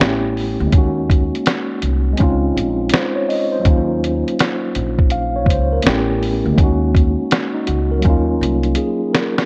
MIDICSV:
0, 0, Header, 1, 4, 480
1, 0, Start_track
1, 0, Tempo, 731707
1, 474, Time_signature, 4, 2, 24, 8
1, 6202, End_track
2, 0, Start_track
2, 0, Title_t, "Tine electric piano"
2, 0, Program_c, 0, 4
2, 0, Control_c, 0, 64, 127
2, 0, Note_on_c, 0, 57, 78
2, 0, Note_on_c, 0, 59, 71
2, 0, Note_on_c, 0, 61, 74
2, 1, Control_c, 0, 64, 0
2, 3, Note_on_c, 0, 64, 71
2, 15, Note_on_c, 0, 67, 86
2, 118, Control_c, 0, 64, 127
2, 440, Note_on_c, 0, 56, 72
2, 457, Note_on_c, 0, 58, 66
2, 466, Note_off_c, 0, 57, 0
2, 467, Note_off_c, 0, 61, 0
2, 471, Note_off_c, 0, 59, 0
2, 475, Note_on_c, 0, 61, 66
2, 479, Note_off_c, 0, 64, 0
2, 483, Control_c, 0, 64, 0
2, 484, Note_off_c, 0, 67, 0
2, 494, Note_on_c, 0, 63, 64
2, 509, Note_on_c, 0, 66, 82
2, 589, Control_c, 0, 64, 127
2, 1390, Note_off_c, 0, 56, 0
2, 1398, Note_on_c, 0, 56, 81
2, 1406, Note_off_c, 0, 58, 0
2, 1415, Note_off_c, 0, 61, 0
2, 1416, Note_on_c, 0, 60, 78
2, 1425, Note_off_c, 0, 63, 0
2, 1433, Note_off_c, 0, 66, 0
2, 1434, Note_on_c, 0, 61, 80
2, 1443, Control_c, 0, 64, 0
2, 1452, Note_on_c, 0, 63, 73
2, 1467, Note_on_c, 0, 65, 96
2, 1562, Control_c, 0, 64, 127
2, 1921, Note_on_c, 0, 72, 65
2, 2064, Note_off_c, 0, 72, 0
2, 2072, Note_on_c, 0, 73, 76
2, 2152, Note_off_c, 0, 73, 0
2, 2156, Note_on_c, 0, 75, 70
2, 2301, Note_off_c, 0, 75, 0
2, 2310, Note_on_c, 0, 72, 64
2, 2356, Note_off_c, 0, 56, 0
2, 2358, Note_on_c, 0, 54, 71
2, 2366, Note_off_c, 0, 60, 0
2, 2375, Note_off_c, 0, 61, 0
2, 2375, Note_on_c, 0, 58, 68
2, 2384, Note_off_c, 0, 63, 0
2, 2392, Note_off_c, 0, 65, 0
2, 2394, Note_on_c, 0, 61, 66
2, 2403, Control_c, 0, 64, 0
2, 2410, Note_on_c, 0, 63, 70
2, 2428, Note_on_c, 0, 65, 80
2, 2521, Control_c, 0, 64, 127
2, 2537, Note_off_c, 0, 72, 0
2, 3355, Note_on_c, 0, 77, 67
2, 3501, Note_off_c, 0, 77, 0
2, 3516, Note_on_c, 0, 73, 65
2, 3594, Note_off_c, 0, 73, 0
2, 3601, Note_on_c, 0, 72, 71
2, 3744, Note_off_c, 0, 72, 0
2, 3754, Note_on_c, 0, 70, 68
2, 3790, Note_off_c, 0, 54, 0
2, 3798, Note_off_c, 0, 58, 0
2, 3808, Note_off_c, 0, 61, 0
2, 3816, Note_off_c, 0, 63, 0
2, 3821, Note_on_c, 0, 57, 80
2, 3825, Note_off_c, 0, 65, 0
2, 3828, Note_on_c, 0, 59, 76
2, 3838, Note_on_c, 0, 61, 76
2, 3842, Control_c, 0, 64, 0
2, 3849, Note_on_c, 0, 64, 72
2, 3856, Note_on_c, 0, 67, 90
2, 3950, Control_c, 0, 64, 127
2, 3979, Note_off_c, 0, 70, 0
2, 4284, Note_on_c, 0, 56, 77
2, 4301, Note_on_c, 0, 58, 70
2, 4308, Note_off_c, 0, 57, 0
2, 4310, Note_off_c, 0, 61, 0
2, 4311, Note_off_c, 0, 59, 0
2, 4318, Note_on_c, 0, 61, 73
2, 4322, Note_off_c, 0, 64, 0
2, 4323, Control_c, 0, 64, 0
2, 4325, Note_off_c, 0, 67, 0
2, 4336, Note_on_c, 0, 63, 72
2, 4352, Note_on_c, 0, 66, 89
2, 4433, Control_c, 0, 64, 127
2, 4560, Note_off_c, 0, 63, 0
2, 4569, Note_off_c, 0, 66, 0
2, 4947, Note_on_c, 0, 63, 62
2, 5030, Note_off_c, 0, 63, 0
2, 5032, Note_on_c, 0, 66, 66
2, 5179, Note_off_c, 0, 66, 0
2, 5193, Note_on_c, 0, 70, 66
2, 5240, Note_off_c, 0, 56, 0
2, 5243, Note_on_c, 0, 54, 78
2, 5248, Note_off_c, 0, 58, 0
2, 5257, Note_off_c, 0, 61, 0
2, 5260, Note_on_c, 0, 58, 76
2, 5278, Note_on_c, 0, 61, 80
2, 5282, Control_c, 0, 64, 0
2, 5294, Note_on_c, 0, 63, 74
2, 5312, Note_on_c, 0, 65, 88
2, 5392, Control_c, 0, 64, 127
2, 5419, Note_off_c, 0, 70, 0
2, 5754, Note_on_c, 0, 68, 61
2, 5764, Note_off_c, 0, 65, 0
2, 5982, Note_off_c, 0, 68, 0
2, 5992, Note_on_c, 0, 70, 64
2, 6139, Note_off_c, 0, 70, 0
2, 6153, Note_on_c, 0, 66, 62
2, 6199, Note_off_c, 0, 54, 0
2, 6202, Note_off_c, 0, 58, 0
2, 6202, Note_off_c, 0, 61, 0
2, 6202, Note_off_c, 0, 63, 0
2, 6202, Note_off_c, 0, 66, 0
2, 6202, End_track
3, 0, Start_track
3, 0, Title_t, "Upright bass"
3, 0, Program_c, 1, 32
3, 2, Note_on_c, 1, 33, 92
3, 365, Note_off_c, 1, 33, 0
3, 395, Note_on_c, 1, 38, 89
3, 470, Note_off_c, 1, 38, 0
3, 478, Note_on_c, 1, 39, 100
3, 844, Note_off_c, 1, 39, 0
3, 1201, Note_on_c, 1, 36, 73
3, 1414, Note_off_c, 1, 36, 0
3, 1448, Note_on_c, 1, 37, 97
3, 1659, Note_off_c, 1, 37, 0
3, 1683, Note_on_c, 1, 34, 85
3, 1896, Note_off_c, 1, 34, 0
3, 2398, Note_on_c, 1, 39, 106
3, 2763, Note_off_c, 1, 39, 0
3, 3122, Note_on_c, 1, 34, 78
3, 3585, Note_off_c, 1, 34, 0
3, 3585, Note_on_c, 1, 37, 92
3, 3806, Note_off_c, 1, 37, 0
3, 3842, Note_on_c, 1, 33, 94
3, 4205, Note_off_c, 1, 33, 0
3, 4235, Note_on_c, 1, 38, 88
3, 4310, Note_off_c, 1, 38, 0
3, 4319, Note_on_c, 1, 39, 95
3, 4684, Note_off_c, 1, 39, 0
3, 5041, Note_on_c, 1, 37, 76
3, 5255, Note_off_c, 1, 37, 0
3, 5285, Note_on_c, 1, 39, 97
3, 5496, Note_off_c, 1, 39, 0
3, 5520, Note_on_c, 1, 36, 90
3, 5734, Note_off_c, 1, 36, 0
3, 6202, End_track
4, 0, Start_track
4, 0, Title_t, "Drums"
4, 8, Note_on_c, 9, 38, 107
4, 74, Note_off_c, 9, 38, 0
4, 243, Note_on_c, 9, 46, 50
4, 309, Note_off_c, 9, 46, 0
4, 475, Note_on_c, 9, 42, 69
4, 476, Note_on_c, 9, 36, 110
4, 540, Note_off_c, 9, 42, 0
4, 542, Note_off_c, 9, 36, 0
4, 719, Note_on_c, 9, 36, 99
4, 729, Note_on_c, 9, 42, 60
4, 785, Note_off_c, 9, 36, 0
4, 794, Note_off_c, 9, 42, 0
4, 885, Note_on_c, 9, 42, 48
4, 951, Note_off_c, 9, 42, 0
4, 956, Note_on_c, 9, 42, 86
4, 964, Note_on_c, 9, 38, 116
4, 1022, Note_off_c, 9, 42, 0
4, 1029, Note_off_c, 9, 38, 0
4, 1195, Note_on_c, 9, 42, 67
4, 1260, Note_off_c, 9, 42, 0
4, 1427, Note_on_c, 9, 42, 68
4, 1445, Note_on_c, 9, 36, 86
4, 1492, Note_off_c, 9, 42, 0
4, 1511, Note_off_c, 9, 36, 0
4, 1689, Note_on_c, 9, 42, 75
4, 1755, Note_off_c, 9, 42, 0
4, 1898, Note_on_c, 9, 42, 84
4, 1926, Note_on_c, 9, 38, 104
4, 1964, Note_off_c, 9, 42, 0
4, 1991, Note_off_c, 9, 38, 0
4, 2165, Note_on_c, 9, 46, 50
4, 2230, Note_off_c, 9, 46, 0
4, 2394, Note_on_c, 9, 42, 75
4, 2396, Note_on_c, 9, 36, 109
4, 2460, Note_off_c, 9, 42, 0
4, 2461, Note_off_c, 9, 36, 0
4, 2650, Note_on_c, 9, 42, 65
4, 2715, Note_off_c, 9, 42, 0
4, 2806, Note_on_c, 9, 42, 46
4, 2871, Note_off_c, 9, 42, 0
4, 2880, Note_on_c, 9, 42, 94
4, 2888, Note_on_c, 9, 38, 124
4, 2946, Note_off_c, 9, 42, 0
4, 2953, Note_off_c, 9, 38, 0
4, 3115, Note_on_c, 9, 42, 66
4, 3180, Note_off_c, 9, 42, 0
4, 3271, Note_on_c, 9, 36, 83
4, 3336, Note_off_c, 9, 36, 0
4, 3347, Note_on_c, 9, 42, 69
4, 3412, Note_off_c, 9, 42, 0
4, 3583, Note_on_c, 9, 36, 93
4, 3609, Note_on_c, 9, 42, 74
4, 3648, Note_off_c, 9, 36, 0
4, 3675, Note_off_c, 9, 42, 0
4, 3821, Note_on_c, 9, 42, 83
4, 3848, Note_on_c, 9, 38, 114
4, 3886, Note_off_c, 9, 42, 0
4, 3914, Note_off_c, 9, 38, 0
4, 4085, Note_on_c, 9, 46, 50
4, 4151, Note_off_c, 9, 46, 0
4, 4315, Note_on_c, 9, 36, 110
4, 4318, Note_on_c, 9, 42, 71
4, 4381, Note_off_c, 9, 36, 0
4, 4384, Note_off_c, 9, 42, 0
4, 4558, Note_on_c, 9, 36, 99
4, 4569, Note_on_c, 9, 42, 59
4, 4623, Note_off_c, 9, 36, 0
4, 4635, Note_off_c, 9, 42, 0
4, 4797, Note_on_c, 9, 42, 93
4, 4804, Note_on_c, 9, 38, 116
4, 4862, Note_off_c, 9, 42, 0
4, 4870, Note_off_c, 9, 38, 0
4, 5032, Note_on_c, 9, 42, 68
4, 5098, Note_off_c, 9, 42, 0
4, 5264, Note_on_c, 9, 42, 65
4, 5282, Note_on_c, 9, 36, 86
4, 5330, Note_off_c, 9, 42, 0
4, 5347, Note_off_c, 9, 36, 0
4, 5530, Note_on_c, 9, 42, 71
4, 5596, Note_off_c, 9, 42, 0
4, 5665, Note_on_c, 9, 42, 41
4, 5731, Note_off_c, 9, 42, 0
4, 5741, Note_on_c, 9, 42, 79
4, 5807, Note_off_c, 9, 42, 0
4, 6000, Note_on_c, 9, 38, 91
4, 6003, Note_on_c, 9, 42, 70
4, 6066, Note_off_c, 9, 38, 0
4, 6068, Note_off_c, 9, 42, 0
4, 6155, Note_on_c, 9, 38, 88
4, 6202, Note_off_c, 9, 38, 0
4, 6202, End_track
0, 0, End_of_file